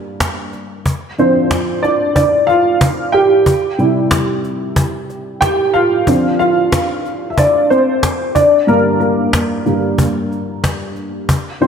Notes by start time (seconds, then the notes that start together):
Already playing: G2 D3 A#3 A#4
0.20 cajon bass, cajon slap
0.53 cajon slap
0.86 cajon bass
1.18 D3 F3 C4 C5, cajon slap
1.51 cajon bass, cajon slap
1.83 D4 D5, cajon slap
2.16 D4 D5, cajon bass
2.47 F4 F5, cajon slap
2.81 cajon bass, cajon slap
3.12 G4 G5, cajon slap
3.46 cajon bass
3.78 C3 G3 E4, cajon slap
4.11 cajon bass, cajon slap
4.44 cajon slap
4.76 cajon bass
5.10 cajon slap
5.41 G4 G5, cajon bass, cajon slap
5.74 F4 F5, cajon slap
6.07 D3 F3 C4, cajon bass
6.39 F4 F5, cajon slap
6.72 cajon bass, cajon slap
7.05 cajon slap
7.30 E5
7.38 D4 D5, cajon bass
7.70 C4 C5, cajon slap
8.03 cajon bass, cajon slap
8.35 D4 D5, cajon bass
8.67 G2 D3 A#3 A#4, cajon slap
9.00 A#3 A#4, cajon slap
9.33 cajon bass, cajon slap
9.66 G2 D3 A#3, cajon slap
9.98 cajon bass
10.32 cajon slap
10.64 cajon bass, cajon slap
10.96 cajon slap
11.29 cajon bass
11.61 D3 F3 C4 C5, cajon slap